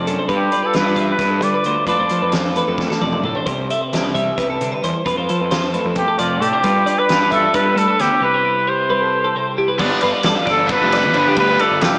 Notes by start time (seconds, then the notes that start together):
Already playing: C3 F3 A3
0.07 F#2 D4 A4, closed hi-hat
0.19 C5
0.28 G2 G3 F4 G4 B4, kick, closed hi-hat
0.52 F4 D5, closed hi-hat
0.63 A4 B4
0.73 G2 F4 B4, snare, closed hi-hat
0.85 D5
0.95 D4 E5, kick, closed hi-hat
1.10 B4
1.19 G2 B4, kick, snare, closed hi-hat
1.31 A4
1.42 D3 G3 D5, closed hi-hat
1.54 B4
1.64 D2 F4 C5, closed hi-hat
1.87 F2 F3 A3 D4 F4 A4 B4 D5, kick, closed hi-hat
1.99 F2 C5
2.09 F3 A4, closed hi-hat
2.22 F2 B4
2.32 F4 C5, snare, closed hi-hat
2.55 A3 B4, closed hi-hat
2.68 F2 A4
2.78 kick, snare
2.90 A4, snare
3.01 F2 C3 D5, high tom
3.12 mid tom
3.23 A2 D4 A4, mid tom
3.35 C5, floor tom
3.46 C2 C3 G4 C5, kick, closed hi-hat
3.70 A4 E5, closed hi-hat
3.81 B4 C5
3.93 C2 G4, snare, closed hi-hat
4.03 D5
4.15 G3 E5, kick, closed hi-hat
4.37 C2 C3 B4, kick, closed hi-hat
4.50 A4
4.60 C3 D3, closed hi-hat
4.72 B4
4.83 E2 E3 C5, closed hi-hat
5.05 F2 F3 F4 B4, kick, closed hi-hat
5.17 F2 C5
5.29 F3 A4, closed hi-hat
5.40 F2 B4
5.51 F4 C5, snare, closed hi-hat
5.74 A3 B4, closed hi-hat
5.85 F2 A4
5.95 G4, kick, closed hi-hat
6.08 A4
6.19 F2 C3 F4 D5, closed hi-hat
6.41 A2 D4 G4 A4, closed hi-hat
6.53 C5
6.63 G2 G3 D4 F4 B4, kick, closed hi-hat
6.86 F4 D5, closed hi-hat
6.99 B4
7.09 G2 F4, snare, closed hi-hat
7.21 D5
7.31 D4 A4 E5, kick, closed hi-hat
7.54 G2 G3 B4, kick, closed hi-hat
7.65 A4
7.76 G3 A3 A4, closed hi-hat
7.88 B4
7.99 D2 B3 G4 C5, snare, closed hi-hat
8.20 C3 G3 E4 G4 B4
8.34 C5
8.45 G4
8.56 B4
8.67 G4 C5
8.89 G3 B4
9.02 A4
9.24 A4
9.35 C3 C5
9.58 E4 G4
9.68 B4
9.78 G1 D3 F3 G3 B3 D4 B4 D5, kick, crash
10.01 G1 F4 B4, muted overdriven electric guitar stroke, ride
10.14 D5
10.23 G2 A4 D5, muted overdriven electric guitar stroke, snare, ride
10.36 B4 F5
10.45 G1 D4 D5, muted overdriven electric guitar stroke, kick, snare, ride
10.50 F4 A4
10.59 B4
10.67 D3 F3 B3 D4, kick, ride
10.72 F4 B4
10.81 F1 G4
10.92 D5, muted overdriven electric guitar stroke, snare, ride
11.04 E2
11.14 G1 D3 F3 B3 D4 F4 C5, ride
11.28 G4
11.36 D2 D3 F3 G3 B3 D4 F4 B4, kick, ride
11.49 B4
11.59 F4 A4 D5, muted overdriven electric guitar stroke, ride
11.71 G1
11.81 F1 F4 G4 F5, muted overdriven electric guitar stroke, snare, ride